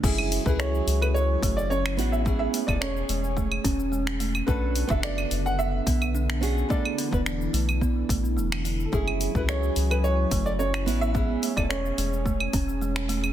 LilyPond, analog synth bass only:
\new Staff \with { instrumentName = "Analog synth bass" } { \clef bass \time 4/4 \key fis \minor \tempo 4 = 108 fis,,8. cis,8. cis,4 fis,,4 a,,8~ | a,,8 r16 e,,8. e,,4 e,,4. | b,,8. fis,,8. fis,,4 b,,4. | r8. e,,8. b,,4 a,,16 b,,16 e,,4 |
fis,,8. cis,8. cis,4 fis,,4 a,,8~ | a,,8 r16 e,,8. e,,4 e,,4. | }